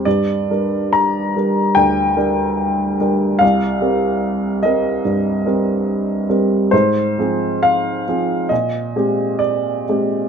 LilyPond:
\new Staff \with { instrumentName = "Grand piano" } { \time 4/4 \key g \phrygian \tempo 4 = 72 << { d''4 bes''4 g''2 | f''4. ees''2~ ees''8 | c''4 f''4 ees''4 d''4 | } \\ { g,8 <g d' bes'>4 <g d' bes'>8 d,8 <g d' bes'>4 <g d' bes'>8 | c,8 <g c' bes'>4 <g c' bes'>8 g,8 <g c' bes'>4 <g c' bes'>8 | aes,8 <f c' aes'>4 <f c' aes'>8 bes,8 <aes c' g'>4 <aes c' g'>8 | } >> }